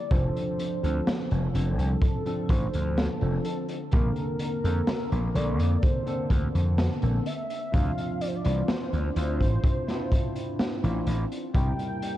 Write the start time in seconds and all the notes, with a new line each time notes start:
Already playing: D3 F3 C4 D5
0.11 F1 F3 C4 D4 A4 C5, kick, closed hi-hat
0.36 closed hi-hat
0.59 closed hi-hat
0.83 D2 F3 C4 D4 A4, closed hi-hat
1.07 snare, closed hi-hat
1.31 F1, closed hi-hat
1.54 F1 F3 C4 D4 A4, closed hi-hat
1.79 C2, closed hi-hat
2.02 A4, kick, closed hi-hat
2.26 F3 C4 D4 A4, closed hi-hat
2.49 A1 C5, kick, closed hi-hat
2.73 D2, closed hi-hat
2.97 A4, snare, closed hi-hat
3.21 F1 F3 C4 D4 A4, closed hi-hat
3.45 A4, closed hi-hat
3.69 closed hi-hat
3.92 A#1 D3 A#3 C4 A#4, kick, closed hi-hat
4.16 closed hi-hat
4.40 closed hi-hat
4.64 F2 D3 A#3 C4 A4, closed hi-hat
4.87 snare, closed hi-hat
5.12 A#1, closed hi-hat
5.34 A#1 D3 A#3 C4 A4 D5, closed hi-hat
5.59 F2, closed hi-hat
5.83 C5, kick, closed hi-hat
6.06 D3 A#3 C4 A4, closed hi-hat
6.30 D2, kick, closed hi-hat
6.55 F2, closed hi-hat
6.78 snare, closed hi-hat
7.02 A#1 D3 A#3 C4 A4, closed hi-hat
7.26 E5, closed hi-hat
7.50 closed hi-hat
7.72 D2 F3 C4 D4 F4 F5, kick, closed hi-hat
7.98 closed hi-hat
8.21 D5, closed hi-hat
8.28 C5
8.36 D5
8.45 C2 E3 C4 D4 F4, closed hi-hat
8.68 C5, snare, closed hi-hat
8.93 D2, closed hi-hat
9.15 D2 C4 D4 E4 F4 C5, closed hi-hat
9.41 A1, kick, closed hi-hat
9.64 kick, closed hi-hat
9.87 C4 D4 E4 F4, snare, closed hi-hat
10.12 kick, closed hi-hat
10.36 closed hi-hat
10.59 snare, closed hi-hat
10.83 A1 E3 C4 D4 F4, closed hi-hat
11.07 A1, closed hi-hat
11.32 closed hi-hat
11.54 C2 G3 A#3 C4 E4 G4 A#4 G5, kick, closed hi-hat
11.79 closed hi-hat
12.02 closed hi-hat